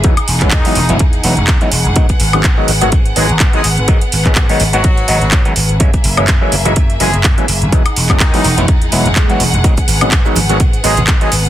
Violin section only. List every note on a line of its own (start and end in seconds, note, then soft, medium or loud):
0.00 5.76 G#4 medium
0.04 1.94 D#4 medium
0.04 5.76 F#5 medium
1.96 5.76 B3 medium
5.80 7.70 A#3 medium
5.80 11.49 G#4 medium
5.80 7.70 E5 medium
7.72 9.62 D#4 medium
7.72 11.49 F#5 medium
9.64 11.49 B3 medium